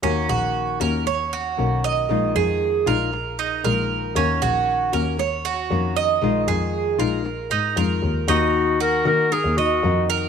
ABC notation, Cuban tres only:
X:1
M:4/4
L:1/8
Q:1/4=116
K:Ebm
V:1 name="Cuban tres"
D G2 B d G2 e- | e A2 B2 E B2 | D G2 B d G2 e- | e A2 B2 E B2 |
E2 G2 B e2 B |]